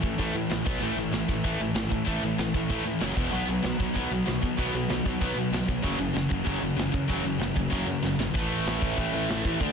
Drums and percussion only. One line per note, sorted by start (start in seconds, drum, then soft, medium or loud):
0.03 kick loud
0.03 crash medium
0.19 kick medium
0.19 crash loud
0.35 crash medium
0.51 snare loud
0.51 crash medium
0.67 kick loud
0.67 crash medium
0.83 crash medium
0.98 crash medium
1.13 snare loud
1.13 crash medium
1.29 kick medium
1.29 crash medium
1.44 kick loud
1.44 crash medium
1.60 crash medium
1.75 snare loud
1.75 crash medium
1.92 kick medium
1.92 crash medium
2.07 kick medium
2.07 crash medium
2.23 crash medium
2.38 snare loud
2.38 crash medium
2.54 kick medium
2.54 crash medium
2.69 kick loud
2.69 crash medium
2.85 crash medium
3.00 snare loud
3.00 crash medium
3.16 kick loud
3.16 crash medium
3.32 crash medium
3.48 crash medium
3.63 snare loud
3.63 crash medium
3.79 kick loud
3.79 crash medium
3.96 kick loud
3.96 crash medium
4.11 crash medium
4.27 snare loud
4.27 crash medium
4.43 kick loud
4.43 crash medium
4.59 kick medium
4.59 crash medium
4.75 crash medium
4.89 snare loud
4.89 crash medium
5.06 kick loud
5.06 crash medium
5.21 kick loud
5.21 crash medium
5.37 crash medium
5.53 snare loud
5.53 crash medium
5.68 kick medium
5.68 crash medium
5.84 kick loud
5.84 crash medium
6.00 crash medium
6.16 snare loud
6.16 crash medium
6.31 kick loud
6.31 crash medium
6.47 kick loud
6.47 crash medium
6.63 crash medium
6.79 snare loud
6.79 crash medium
6.94 kick loud
6.94 crash medium
7.10 kick loud
7.10 crash medium
7.26 crash medium
7.41 snare loud
7.41 crash medium
7.57 kick loud
7.57 crash medium
7.72 kick loud
7.72 crash medium
7.88 crash medium
8.05 snare medium
8.20 snare loud
8.35 kick loud
8.35 crash loud
8.35 crash medium
8.67 snare loud
8.67 crash medium
8.82 kick loud
8.98 kick loud
8.98 crash medium
9.30 snare loud
9.30 crash medium
9.45 kick loud
9.60 kick medium
9.60 crash medium